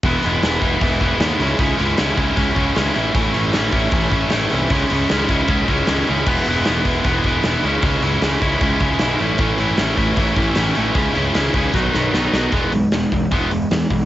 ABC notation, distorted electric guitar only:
X:1
M:4/4
L:1/8
Q:1/4=154
K:E
V:1 name="Distorted electric guitar" clef=bass
[E,G,B,E] [E,G,B,E] [E,G,B,E] [E,G,B,E] [E,G,B,E] [E,G,B,E] [E,G,B,E] [C,G,CE] | [C,G,CE] [C,G,CE] [C,G,CE] [C,G,CE] [C,G,CE] [C,G,CE] [C,G,CE] [A,,E,A,CE] | [A,,E,A,CE] [A,,E,A,CE] [A,,E,A,CE] [A,,E,A,CE] [A,,E,A,CE] [A,,E,A,CE] [A,,E,A,CE] [A,,E,A,CE] | [C,G,CE] [C,G,CE] [C,G,CE] [C,G,CE] [C,G,CE] [C,G,CE] [C,G,CE] [C,G,CE] |
[E,G,B,E] [E,G,B,E] [E,G,B,E] [E,G,B,E] [E,G,B,E] [E,G,B,E] [E,G,B,E] [C,G,CE] | [C,G,CE] [C,G,CE] [C,G,CE] [C,G,CE] [C,G,CE] [C,G,CE] [C,G,CE] [A,,E,A,CE] | [A,,E,A,CE] [A,,E,A,CE] [A,,E,A,CE] [A,,E,A,CE] [A,,E,A,CE] [A,,E,A,CE] [A,,E,A,CE] [A,,E,A,CE] | [C,G,CE] [C,G,CE] [C,G,CE] [C,G,CE] [B,,D,F,B,D] [B,,D,F,B,D] [B,,D,F,B,D] [B,,D,F,B,D] |
[E,G,B,] [E,G,] [E,G,] [E,G,] [E,G,B,] [E,G,] [E,G,] [E,G,] |]